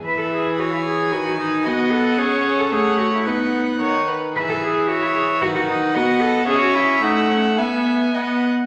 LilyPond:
<<
  \new Staff \with { instrumentName = "Violin" } { \time 2/4 \key e \major \tempo 4 = 112 e''4 gis''4~ | gis''4 fis''4~ | fis''4 fis''4 | fis''4. r8 |
e''4 e''4 | fis''2 | e''2 | gis''4 fis''8 r8 | }
  \new Staff \with { instrumentName = "Violin" } { \time 2/4 \key e \major b'4 cis''4 | b'4 dis''4 | cis''4 cis''4 | b'4 cis''8 b'8 |
gis'4 cis''4 | b'4 dis''4 | cis''4 fis''4 | e''4 dis''8 r8 | }
  \new Staff \with { instrumentName = "Cello" } { \time 2/4 \key e \major b'16 a'16 gis'8 fis'16 e'16 gis'8 | fis'16 fis'16 dis'8 fis'8 a'8 | gis'8. a'16 gis'8 fis'16 e'16 | dis'4 r4 |
b'16 a'16 gis'8 fis'16 e'16 gis'8 | fis'16 fis'16 dis'8 fis'8 a'8 | gis'16 fis'16 e'8 dis'8 cis'8 | b4. r8 | }
  \new Staff \with { instrumentName = "Viola" } { \time 2/4 \key e \major e2 | dis4 b4 | cis'4 a4 | b4 dis8 r8 |
e2 | dis4 b4 | cis'4 a4 | b4 b8 r8 | }
>>